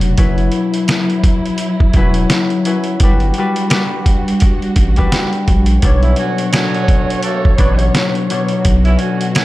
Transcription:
Already playing: sub bass F1, string section B2 F#4, harp B2 F#3 D4 C#5
0.01 closed hi-hat
0.18 sub bass F#1, harp F#3 C#4 E4 B4, string section F#3 E4, kick, closed hi-hat
0.38 closed hi-hat
0.52 closed hi-hat
0.74 closed hi-hat
0.88 snare, closed hi-hat
1.10 closed hi-hat
1.24 kick, closed hi-hat
1.46 closed hi-hat
1.58 closed hi-hat
1.80 kick
1.93 sub bass E1, harp F#3 C#4 E4 B4, kick, closed hi-hat
2.14 closed hi-hat
2.30 snare, closed hi-hat
2.50 closed hi-hat
2.65 harp F#3 C#4 E4 B4, closed hi-hat
2.84 closed hi-hat
3.00 sub bass G1, string section G3 F#4, harp G3 D4 F#4, kick, closed hi-hat
3.04 harp B4
3.20 closed hi-hat
3.34 closed hi-hat
3.38 harp G3 D4 F#4 B4
3.56 closed hi-hat
3.70 harp G3 D4 F#4 B4, snare, closed hi-hat
4.06 kick, closed hi-hat
4.28 closed hi-hat
4.40 kick, closed hi-hat
4.62 closed hi-hat
4.76 sub bass A1, kick, closed hi-hat
4.96 harp G3 D4 F#4 B4, kick, closed hi-hat
5.12 snare, closed hi-hat
5.33 closed hi-hat
5.48 sub bass A#1, kick, closed hi-hat
5.66 closed hi-hat
5.81 sub bass B1, string section B2 C#5, harp B2 F#3 D4, kick, closed hi-hat
5.85 harp C#5
6.03 horn section E3 C#4 E4, closed hi-hat
6.16 horn section D3 F#3 C#4 F#4, closed hi-hat
6.38 closed hi-hat
6.52 horn section D3 F#3 C#4 F#4, snare, closed hi-hat
6.75 closed hi-hat
6.88 kick, closed hi-hat
7.10 closed hi-hat
7.23 horn section A3 A#3 F#4 A4, closed hi-hat
7.45 kick
7.58 sub bass A1, harp B2 F#3 D4 C#5, horn section F#3 B3 D4 B4, kick, closed hi-hat
7.79 closed hi-hat
7.95 snare, closed hi-hat
8.15 closed hi-hat
8.30 harp B2 F#3 D4 C#5, closed hi-hat
8.48 closed hi-hat
8.65 sub bass B1, string section F#4, kick, closed hi-hat
8.85 horn section E3 C#4 E4, closed hi-hat
8.99 horn section D3 F#3 C#4 F#4, closed hi-hat
9.21 closed hi-hat
9.35 horn section D3 F#3 C#4 F#4, snare, closed hi-hat

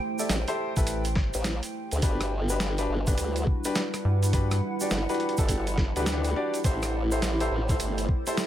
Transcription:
Already playing: analog synth pad A3 E4 G4 C5, ambient pad G5
0.19 grand piano E4 G4 A4 D5, shaker
0.29 wobble bass A1, snare, closed hi-hat, shaker
0.48 grand piano E4 G4 A4 C5, closed hi-hat, shaker
0.76 analog synth bass A1, grand piano E4 G4 A4 B4, kick, closed hi-hat, shaker
0.87 closed hi-hat, shaker
1.05 closed hi-hat, shaker
1.15 kick, snare
1.34 wobble bass A1, closed hi-hat, shaker
1.44 snare, closed hi-hat, shaker
1.63 closed hi-hat, shaker
1.91 wobble bass D2, closed hi-hat, shaker
2.02 wobble bass G1, analog synth pad G3 D4 F#4 B4, grand piano D4 F#4 G4 B4, ambient pad E4, kick, closed hi-hat, shaker
2.21 cross-stick, closed hi-hat, shaker
2.49 grand piano D4 F#4 G4 B4, shaker
2.60 snare, closed hi-hat, shaker
2.78 grand piano D4 F#4 G4 B4, closed hi-hat, shaker
2.89 wobble bass G1
3.07 grand piano D4 F#4 G4 B4, kick, closed hi-hat, shaker
3.16 wobble bass D2, ambient pad F#5, closed hi-hat, shaker
3.36 closed hi-hat, shaker
3.47 kick
3.64 grand piano D4 F#4 G4 B4, closed hi-hat, shaker
3.75 snare, closed hi-hat, shaker
3.94 cross-stick, closed hi-hat, shaker
4.05 analog synth bass G2
4.23 closed hi-hat, shaker
4.33 grand piano D4 F#4 G4 B4, analog synth pad G4, kick, closed hi-hat, shaker
4.51 cross-stick, closed hi-hat, shaker
4.80 grand piano D4 F#4 G4 D5, shaker
4.90 wobble bass G1, snare, closed hi-hat, shaker
5.09 grand piano D4 F#4 G4 B4, closed hi-hat, shaker
5.14 closed hi-hat
5.20 closed hi-hat
5.29 closed hi-hat
5.37 wobble bass G1, grand piano D4 F#4 G4 A4, kick, closed hi-hat, shaker
5.49 kick, closed hi-hat, shaker
5.67 closed hi-hat, shaker
5.78 kick, snare
5.96 wobble bass D2, grand piano D4 F#4 G4 B4, closed hi-hat, shaker
6.06 grand piano D4 F#4 G4 B4, snare, closed hi-hat, shaker
6.24 closed hi-hat, shaker
6.36 grand piano D4 F#4 G4 D5
6.54 closed hi-hat, shaker
6.64 wobble bass A1, analog synth pad A3 E4 C5, grand piano E4 G4 A4 C5, kick, closed hi-hat, shaker
6.78 ambient pad A4
6.82 cross-stick, closed hi-hat, shaker
7.07 ambient pad D5
7.11 grand piano E4 G4 A4 C5, shaker
7.22 snare, closed hi-hat, shaker
7.40 grand piano E4 G4 A4 C5, closed hi-hat, shaker
7.51 wobble bass A1
7.69 grand piano E4 G4 A4 C5, kick, closed hi-hat, shaker
7.80 wobble bass G1, closed hi-hat, shaker
7.98 closed hi-hat, shaker
8.09 kick
8.19 ambient pad G5
8.27 grand piano E4 G4 A4 C5, closed hi-hat, shaker
8.37 snare, closed hi-hat, shaker

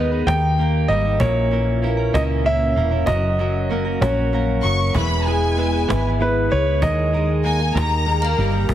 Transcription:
Already playing: fingered electric bass D#2, steel-string acoustic guitar D#3 G#3, clean electric guitar G#3 B3 D#4 B4, grand piano D#5
0.12 clean electric guitar B3 D#4 B4
0.26 fingered electric bass D#2, clean electric guitar D#3 A#3 D#4 G4 A#4, grand piano G5, cajon slap
0.58 clean electric guitar A#3 D#4 G4 A#4, cajon slap
0.88 fingered electric bass G#1, steel-string acoustic guitar G3, clean electric guitar A#3 D#4 G4 A#4, grand piano D#5, cajon slap
1.05 clean electric guitar D#4 G4 A#4
1.20 fingered electric bass A#1, steel-string acoustic guitar A#2, clean electric guitar A#3 C#4 E4 A#4, grand piano C#5, cajon bass
1.51 steel-string acoustic guitar E3, clean electric guitar A#3 C#4 E4 A#4, cajon slap
1.82 clean electric guitar A#3 C#4 E4 A#4, cajon slap
1.97 clean electric guitar C#4 E4 A#4
2.13 fingered electric bass C#2, clean electric guitar A#3 C#4 E4 A#4, grand piano D#5, cajon slap
2.44 clean electric guitar A#3 C#4 E4 A#4, grand piano E5, cajon slap
2.76 fingered electric bass E1, steel-string acoustic guitar E3, clean electric guitar A#3 C#4 E4 A#4, cajon slap
2.91 clean electric guitar C#4 E4 A#4
3.06 fingered electric bass F#1, steel-string acoustic guitar F#2, clean electric guitar F#3 C#4 F#4 A#4, grand piano D#5, cajon bass
3.38 clean electric guitar F#3 C#4 F#4 A#4, cajon slap
3.69 clean electric guitar F#3 C#4 F#4 A#4, steel-string acoustic guitar A#3, cajon slap
3.85 clean electric guitar C#4 F#4 A#4
4.01 fingered electric bass A#1, clean electric guitar F#3 C#4 F#4 A#4, grand piano C#5, cajon slap
4.32 clean electric guitar F#3 C#4 F#4 A#4, steel-string acoustic guitar A#3, cajon slap
4.63 fingered electric bass F#1, clean electric guitar F#3 C#4 F#4 A#4, violin section C#6
4.80 clean electric guitar C#4 F#4 A#4
4.95 fingered electric bass E1, clean electric guitar E3 G#3 B3 E4 B4, violin section B5, cajon bass
5.26 clean electric guitar G#3 B3 E4 B4, violin section G#5, cajon slap
5.57 clean electric guitar G#3 B3 E4 B4, cajon slap
5.73 clean electric guitar B3 E4 B4
5.88 fingered electric bass G#1, clean electric guitar E3 G#3 B3 E4 B4, cajon slap
6.19 clean electric guitar G#3 B3 E4 B4, grand piano B4, cajon slap
6.50 fingered electric bass C#2, clean electric guitar G#3 B3 E4 B4, grand piano C#5, cajon slap
6.66 clean electric guitar B3 E4 B4
6.81 fingered electric bass D#2, clean electric guitar D#3 G#3 D#4 G#4 A#4, grand piano D#5, cajon bass
7.12 clean electric guitar G#3 D#4 G#4 A#4, cajon slap
7.44 clean electric guitar G#3 D#4 G#4 A#4, steel-string acoustic guitar A#3, violin section G#5
7.59 clean electric guitar D#4 G#4 A#4
7.75 fingered electric bass D#2, clean electric guitar D#3 A#3 D#4 G4 A#4, violin section A#5, cajon slap
8.06 steel-string acoustic guitar G#3, clean electric guitar A#3 D#4 G4 A#4
8.22 steel-string acoustic guitar A#3
8.38 fingered electric bass G1, steel-string acoustic guitar G3, clean electric guitar A#3 D#4 G4 A#4, cajon slap
8.53 clean electric guitar D#4 G4 A#4
8.69 fingered electric bass G#1, steel-string acoustic guitar G#2, cajon bass

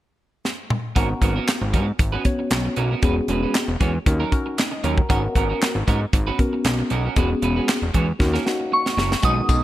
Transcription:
0.45 snare
0.70 mid tom
0.95 analog synth bass G#1, clean electric guitar B3 C#4 F#4 A#4, tine electric piano B3 C#4 F#4 A#4, kick, closed hi-hat
1.10 muted clean electric guitar stroke
1.22 analog synth bass G#1, clean electric guitar B3 C#4 F#4 A#4, kick, closed hi-hat
1.36 clean electric guitar B3 C#4 F#4 A#4
1.48 snare, clap, closed hi-hat
1.61 analog synth bass G#1, muted clean electric guitar stroke
1.73 analog synth bass G#2, clean electric guitar B3 C#4 F#4 A#4, kick, closed hi-hat
1.87 muted clean electric guitar stroke
1.99 analog synth bass G#1, muted clean electric guitar stroke, kick, closed hi-hat
2.12 clean electric guitar B3 C#4 F#4 B4
2.25 tine electric piano B3 C#4 F#4 C#5, muted clean electric guitar stroke, kick, closed hi-hat
2.39 muted clean electric guitar stroke
2.51 analog synth bass B1, muted clean electric guitar stroke, snare, clap, closed hi-hat
2.65 muted clean electric guitar stroke
2.76 analog synth bass B1, clean electric guitar B3 C#4 F#4 A#4, closed hi-hat
2.91 clean electric guitar B3 C#4 F#4 A#4
3.02 analog synth bass E1, clean electric guitar G#3 C#4 F#4 B4, tine electric piano B3 C#4 F#4 G#4, kick, closed hi-hat
3.17 muted clean electric guitar stroke
3.28 analog synth bass E1, clean electric guitar G#3 C#4 F#4 B4, closed hi-hat
3.43 clean electric guitar G#3 C#4 F#4 B4
3.55 snare, clap, closed hi-hat
3.68 analog synth bass E1, muted clean electric guitar stroke
3.80 analog synth bass E2, clean electric guitar G#3 C#4 F#4 C#5, kick, closed hi-hat
3.94 muted clean electric guitar stroke
4.06 analog synth bass D#2, tine electric piano C#4 D#4 F#4 A#4, muted clean electric guitar stroke, kick, closed hi-hat
4.20 clean electric guitar F#3 C#4 D#4 A#4
4.31 tine electric piano C#4 D#4 F#4 A#4, muted clean electric guitar stroke, kick, closed hi-hat
4.46 muted clean electric guitar stroke
4.58 muted clean electric guitar stroke, snare, clap, closed hi-hat
4.71 tine electric piano D#5, muted clean electric guitar stroke
4.84 analog synth bass D#2, clean electric guitar F#3 C#4 D#4 A#4, tine electric piano A#4 C#5, closed hi-hat
4.97 tine electric piano F#4 A#4, muted clean electric guitar stroke, kick
5.09 analog synth bass G#1, clean electric guitar B3 C#4 F#4 A#4, tine electric piano B3 C#4 F#4 A#4, kick, closed hi-hat
5.23 muted clean electric guitar stroke
5.35 analog synth bass G#1, clean electric guitar B3 C#4 F#4 A#4, kick, closed hi-hat
5.49 clean electric guitar B3 C#4 F#4 A#4
5.62 snare, clap, closed hi-hat
5.75 analog synth bass G#1, muted clean electric guitar stroke
5.87 analog synth bass G#2, clean electric guitar B3 C#4 F#4 A#4, kick, closed hi-hat
6.01 muted clean electric guitar stroke
6.13 analog synth bass G#1, muted clean electric guitar stroke, kick, closed hi-hat
6.27 clean electric guitar B3 C#4 F#4 B4
6.39 tine electric piano B3 C#4 F#4 A#4, muted clean electric guitar stroke, kick, closed hi-hat
6.53 muted clean electric guitar stroke
6.65 analog synth bass B1, muted clean electric guitar stroke, snare, clap, closed hi-hat
6.79 muted clean electric guitar stroke
6.90 analog synth bass B1, clean electric guitar B3 C#4 F#4 A#4, closed hi-hat
7.05 clean electric guitar B3 C#4 F#4 A#4
7.16 analog synth bass E1, clean electric guitar G#3 C#4 F#4 B4, tine electric piano B3 C#4 F#4 G#4, kick, closed hi-hat
7.30 muted clean electric guitar stroke
7.42 analog synth bass E1, clean electric guitar G#3 C#4 F#4 B4, closed hi-hat
7.56 clean electric guitar G#3 C#4 F#4 B4
7.69 snare, clap, closed hi-hat
7.82 analog synth bass E1, muted clean electric guitar stroke
7.94 analog synth bass E2, clean electric guitar G#3 C#4 F#4 C#5, kick, closed hi-hat
8.08 muted clean electric guitar stroke
8.19 analog synth bass D#2, tine electric piano A#3 C#4 D#4 F#4, muted clean electric guitar stroke, kick, snare
8.33 clean electric guitar A#3 C#4 F#4 A#4, snare
8.45 tine electric piano A#3 C#4 D#4 F#4, muted clean electric guitar stroke, snare
8.60 muted clean electric guitar stroke
8.72 synth bell C#6, muted clean electric guitar stroke
8.86 muted clean electric guitar stroke, snare
8.97 analog synth bass F#1, clean electric guitar A#3 C#4 F#4 A#4, snare
9.11 muted clean electric guitar stroke, snare
9.22 analog synth bass B1, analog synth pad D#3 G#3 B3 F#4, tine electric piano G#3 C#4 D#4 F#4, clean electric guitar G#3 D#4 F#4 B4, synth bell D#6, kick, closed hi-hat, tambourine
9.37 muted clean electric guitar stroke
9.49 analog synth bass B1, muted clean electric guitar stroke, kick, closed hi-hat, tambourine

